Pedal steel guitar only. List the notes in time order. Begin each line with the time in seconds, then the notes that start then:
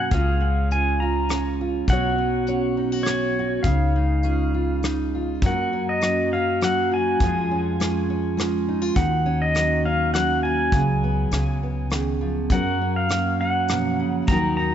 Already playing: F#5
0.12 F5
0.72 G#5
1.00 A#5
1.90 F#5
3.03 C#5
3.63 F5
5.46 F#5
5.89 D#5
6.33 F5
6.64 F#5
6.94 G#5
8.96 F#5
9.42 D#5
9.85 F5
10.14 F#5
10.43 G#5
12.52 F#5
12.96 F5
13.41 F#5
14.28 A#5
14.57 A#5